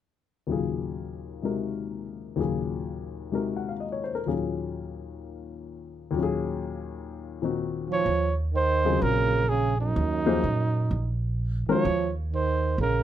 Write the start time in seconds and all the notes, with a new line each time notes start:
0.47 D#2 A#2 C#3 F#3
0.51 F4 G#4
1.42 C3 G#3 D#4 F#4 A#4
2.36 D#2 A#2 C#3 F#3 F4
2.40 G#4
3.32 C3 G#3 D#4 F#4 A#4
3.56 F#5
3.69 F5
3.80 D#5
3.92 C#5
4.04 C5
4.15 A#4
4.26 D#2 A#2 F#3 C#4 F4 G#4
6.11 D#2 A#2
6.16 F#3 C#4
6.20 F4 G#4
7.42 A#2 D#3 C4 D#4 F#4
7.89 F3 C#5
8.06 D#2
8.54 D#3 C5
8.85 C#3 F#3 C4 F4 G#4
9.01 A#1 C#3 A#4
9.48 C#3 G#4
9.78 F#2 D#4
9.96 D#2
10.26 F3 A#3 D#4 G#4 C5
10.43 A#2
10.91 A#1
11.69 D#3 F3 G#3 C#4 F#4 A#4 C#5, muted upright bass stroke
11.85 D#2
12.33 D#3 C5
12.78 A#1 C#3 A#4